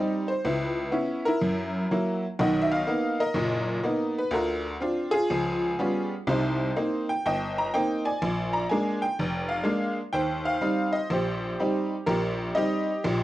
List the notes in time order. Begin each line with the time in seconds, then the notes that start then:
Already playing: G3 C4 D#4 G4 D#5
0.28 C5
0.45 C#2 E4 B4
0.92 B3 C#4 E4
1.25 E4 A#4
1.41 F#2
1.91 F#3 A#3 E4
2.39 B1 D#3 D#5 F#5
2.62 E5
2.72 F5
2.87 A#3 B3 D#4
3.20 A#4 D#5
3.34 F#1 A#2
3.83 A#3 B3 D#4
4.18 B4
4.31 D2 D3 F4 A#4
4.80 C4 D4 F4
5.11 F4 G#4
5.30 C#2 F3
5.79 G3 B3 C#4 F4
6.27 C2 C3 D#4 C5
6.76 A#3 C4 D#4
7.09 G5
7.26 G1 D#5 G5
7.58 A#5
7.74 A#3 C4 D#4 G5
8.05 D5 G#5
8.22 A#1
8.53 A#5
8.69 G#3 A#3 D4 G#5
9.02 G5
9.19 F1
9.49 F5
9.63 G#3 A#3 D4
10.13 D#2 C5 G5
10.45 F5
10.61 G3 C4 D#4
10.93 D#5
11.10 A#1 G4 C5
11.60 G3 C4 D#4
12.06 A#1 G4 A#4
12.55 G3 C4 D#4 G4 D#5
13.04 A#1 A#2